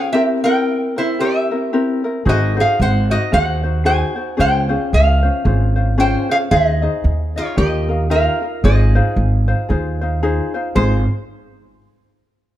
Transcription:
Already playing: C#4 F4 G#4 C5 F5
0.13 C4 E4 G4 A#4 E5
0.44 C4 E4 G4 A#4 G5
0.96 C4 E4 A#4 C5
1.19 C4 E4 G4 A#4 E5
1.51 C4 E4 A#4
1.73 C4 E4 G4 A#4
2.04 C4 E4 A#4
2.25 G#1 D#4 F#4 G#4 C5 D#5
2.57 D#4 F#4 G#4 C5
2.61 F5
2.80 G#1 C5 F#5
3.10 D#4 F#4 C5 D#5
3.32 D#2 D#4 F#4 G#4 C5 F#5
3.63 D#4 F#4 C5
3.85 D#4 F#4 G#4 C5 G#5
4.16 D#4 F#4 C5
4.37 C#2 C#4 F4 G#4 C5 G5
4.69 C#4 F4 G#4 C5
4.93 C#2 G#4 F5
5.22 C#4 F4 C5
5.44 G#1 C#4 F4 G#4 C5
5.76 C#4 F4 C5
5.98 C#4 F4 G#4 C5 G5
6.29 C#4 F4 G#4 C5 F5
6.51 D#2 D#4 G#4 C5 D#5 E5
6.68 D#5
6.82 D#4 G#4 C5 D#5
7.04 D#2
7.36 D#4 F4 G#4 C#5 D#5
7.57 D#2 D#4 F4 G4 A#4 D#5
7.89 D#4 F4 A#4
8.10 D#4 F4 G4 A#4 F5
8.42 D#4 F4 A#4
8.64 G#1 D#4 F4 G#4 C5 D#5
8.95 D#4 F4 G#4 C5
9.16 G#1
9.48 D#4 F4 C5
9.69 D#2 D#4 F4 G#4 C5
10.01 D#4 F4 C5
10.23 D#4 F4 G#4 C5
10.54 D#4 F4 C5
10.75 G#1 D#4 F4 G#4 C5

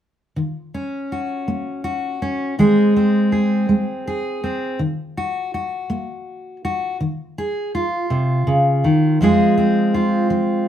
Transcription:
0.36 D#3
0.74 C#4
1.12 F#4
1.48 A#3
1.84 F#4
2.22 C#4
2.59 D#3 G#3 C4 G#4
2.96 C4
3.32 G#4
3.69 G#3
4.07 G#4
4.44 C4
4.79 D#3
5.17 F#4
5.54 F#4
5.90 A#3
6.65 F#4
7.00 D#3
7.38 G#4
7.75 F4
8.10 C3
8.47 C#3
8.84 D#3
9.21 F2 F3 G#3 C4 G#4
9.58 C4
9.94 F4
10.30 F3

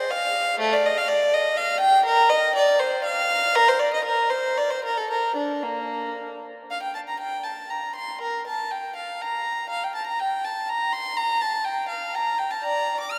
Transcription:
Already playing: C5
0.11 F5
0.60 A3
0.73 D5
0.85 D#5
0.98 F5
1.08 D5
1.34 D#5
1.57 F5
1.80 G5
2.05 A#4
2.30 D#5
2.55 D5
2.79 C5
3.04 F5
3.55 A#4
3.68 C5
3.79 D5
3.94 D#5
4.05 A#4
4.29 C5
4.57 D5
4.70 C5
4.85 A#4
4.97 A4
5.11 A#4
5.36 D4
5.63 A#3
6.70 F5
6.83 G5
6.95 A5
7.09 A#5
7.20 G5
7.44 A5
7.70 A#5
7.96 C6
8.21 A#4
8.47 A5
8.71 G5
8.96 F5
9.22 A#5
9.69 F5
9.84 G5
9.95 A5
10.06 A#5
10.19 G5
10.45 A5
10.69 A#5
10.93 C6
11.17 A#5
11.41 A5
11.64 G5
11.89 F5
12.15 A#5
12.38 G5
12.50 A5
12.63 D5 A#5
13.00 D6
13.11 F6

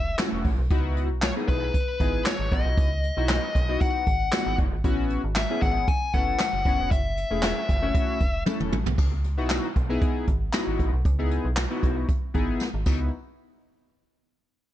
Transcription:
Already playing: E1 E5
0.18 A3 C#4 E4 F#4, snare, clap, closed hi-hat, tambourine
0.33 E1
0.45 A1, kick, open hi-hat
0.58 B1
0.70 C#2 B3 D#4 E4 F#4, kick, closed hi-hat
0.96 closed hi-hat
1.10 B1
1.22 C#5, snare, clap, closed hi-hat, tambourine
1.36 B3 D#4 E4 G#4
1.48 B1 B4, kick, closed hi-hat
1.74 kick, closed hi-hat
2.00 G#1 B3 D#4 E4 G#4, kick, closed hi-hat
2.26 C#5, snare, clap, closed hi-hat, tambourine
2.39 G#1
2.52 A1 B3 D#4 E4 F#4 D#5, kick, closed hi-hat
2.65 B1
2.78 C#2, kick, closed hi-hat
3.03 closed hi-hat
3.17 B1 B3 D#4 E4 F#4
3.29 snare, clap, closed hi-hat, tambourine
3.55 B1, kick, closed hi-hat
3.68 B3 D#4 E4 F#4
3.81 F#5, kick, closed hi-hat
4.06 G#1, kick, closed hi-hat
4.32 B3 D#4 E4 F#4, snare, clap, closed hi-hat, tambourine
4.46 G#1
4.58 F#1, kick, closed hi-hat
4.72 G#1
4.84 A1 B3 C#4 E4 F#4, kick, closed hi-hat
5.10 closed hi-hat
5.24 G#1
5.35 E5, snare, clap, closed hi-hat, tambourine
5.50 B3 C#4 E4 G#4
5.62 G#1 F#5, kick, closed hi-hat
5.88 G#5, kick, closed hi-hat
6.13 F#1 B3 C#4 E4 A4 F#5, kick, closed hi-hat
6.39 snare, clap, closed hi-hat, tambourine
6.53 F#1
6.65 F#1 B3 C#4 E4 F#4, kick, closed hi-hat
6.79 E1
6.91 F#1 E5, kick, closed hi-hat
7.17 closed hi-hat
7.30 E1 A3 C#4 E4 G#4
7.42 snare, clap, closed hi-hat, tambourine
7.69 F#1, kick, closed hi-hat
7.82 A3 C#4 E4 F#4
7.94 kick, closed hi-hat
8.20 E1, kick, closed hi-hat
8.46 A3 C#4 E4 A4, high tom, tambourine
8.60 E1, mid tom
8.72 A1, mid tom
8.86 B1, floor tom
8.98 C#2, kick, crash
9.24 closed hi-hat
9.37 B1 B3 D#4 E4 F#4
9.50 snare, clap, closed hi-hat, tambourine
9.76 B1, kick, closed hi-hat
9.89 B3 D#4 E4 G#4
10.02 kick, closed hi-hat
10.27 G#1, kick, closed hi-hat
10.53 B3 D#4 E4 F#4, snare, clap, closed hi-hat, tambourine
10.67 G#1
10.79 A1, kick, closed hi-hat
10.93 B1
11.05 C#2, kick, closed hi-hat
11.19 B3 D#4 E4 G#4
11.31 closed hi-hat
11.45 B1
11.56 snare, clap, closed hi-hat, tambourine
11.70 B3 D#4 E4 F#4
11.83 B1, kick, closed hi-hat
12.09 kick, closed hi-hat
12.34 G#1 B3 D#4 E4 G#4, kick, closed hi-hat
12.60 snare, tambourine
12.74 G#1
12.86 C#2 B3 D#4 E4 F#4, kick, crash, tambourine

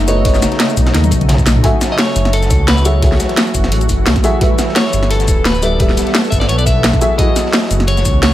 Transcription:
Already playing: F#1 C#3 A3 B3 D#4 F#4 A4 C#5 D#5
0.07 B3 F#4 A4 C#5 D#5, closed hi-hat, shaker
0.24 B3 F#4 A4 C#5 D#5, kick, closed hi-hat
0.34 snare, shaker
0.42 snare, closed hi-hat, shaker
0.52 snare, closed hi-hat
0.60 snare, closed hi-hat
0.68 closed hi-hat, shaker
0.77 B1, kick, closed hi-hat, shaker
0.86 snare
0.94 D#2, snare, closed hi-hat
1.04 closed hi-hat, high tom, shaker
1.11 B1, kick, closed hi-hat, shaker
1.21 closed hi-hat, mid tom
1.29 snare, closed hi-hat, mid tom
1.38 kick, shaker
1.46 snare, closed hi-hat, shaker
1.56 mid tom
1.63 E3 F#3 F#4 A4 E5 G#5, kick, closed hi-hat
1.81 snare, closed hi-hat, shaker
1.91 D#5, snare
1.98 C#5, snare, closed hi-hat, open hi-hat
2.08 snare
2.16 F#1, closed hi-hat, shaker
2.25 snare
2.33 A4, closed hi-hat
2.42 snare, closed hi-hat, shaker
2.51 C#2, kick, closed hi-hat, shaker
2.68 B4, snare, closed hi-hat
2.77 closed hi-hat, shaker
2.85 F#3 F#4 G#4 A4 C#5 E5, closed hi-hat, shaker
3.02 F#3 F#4 G#4 A4 E5, kick, closed hi-hat
3.12 snare
3.20 snare, closed hi-hat, shaker
3.29 snare, closed hi-hat
3.37 snare, closed hi-hat
3.47 closed hi-hat, shaker
3.54 F#1, kick, closed hi-hat, shaker
3.64 snare
3.72 A1, closed hi-hat
3.81 closed hi-hat, shaker
3.89 F#1, kick, closed hi-hat, shaker
4.06 C#2, snare, closed hi-hat
4.16 kick, snare, shaker
4.23 F#3 F#4 G#4 A4 E5, closed hi-hat, shaker
4.40 G3 B3 G4 A4 B4 E5, kick, closed hi-hat
4.58 snare, closed hi-hat, shaker
4.69 snare
4.75 C#5, snare, closed hi-hat, open hi-hat
4.86 snare
4.93 G1, closed hi-hat, shaker
5.03 snare
5.11 A4, closed hi-hat
5.20 snare, closed hi-hat, shaker
5.28 D1, kick, closed hi-hat, shaker
5.45 B4, snare, closed hi-hat
5.54 closed hi-hat, shaker
5.62 G3 G4 A4 B4 D5 E5, closed hi-hat, shaker
5.79 G3 G4 A4 B4 E5, kick, closed hi-hat
5.89 snare
5.97 snare, closed hi-hat, shaker
6.07 snare, closed hi-hat
6.14 snare, closed hi-hat
6.24 closed hi-hat, shaker
6.30 G1 E5, kick, closed hi-hat, shaker
6.40 D5, snare
6.49 B1 C#5, closed hi-hat
6.58 D5, closed hi-hat, shaker
6.66 E5, kick, closed hi-hat, shaker
6.84 snare, closed hi-hat
6.93 kick, snare, shaker
7.01 E3 F#3 A3 F#4 G#4 A4 E5, closed hi-hat, shaker
7.18 F#3 E4 F#4 G#4 A4 D#5, kick, closed hi-hat
7.36 snare, closed hi-hat, shaker
7.46 snare
7.53 snare, closed hi-hat, open hi-hat
7.63 snare
7.71 F#1, closed hi-hat, shaker
7.80 snare
7.87 C#5, closed hi-hat
7.97 snare, closed hi-hat, shaker
8.05 C#2, kick, closed hi-hat, shaker
8.22 C#5, snare, closed hi-hat

